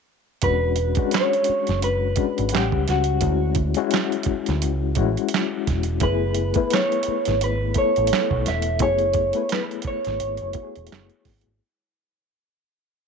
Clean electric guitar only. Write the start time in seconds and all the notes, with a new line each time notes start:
0.44 B4
1.14 C#5
1.84 B4
2.54 G4
2.90 F#4
6.03 B4
6.74 C#5
7.44 B4
7.78 C#5
8.48 E5
8.82 C#5
9.52 B4
9.87 C#5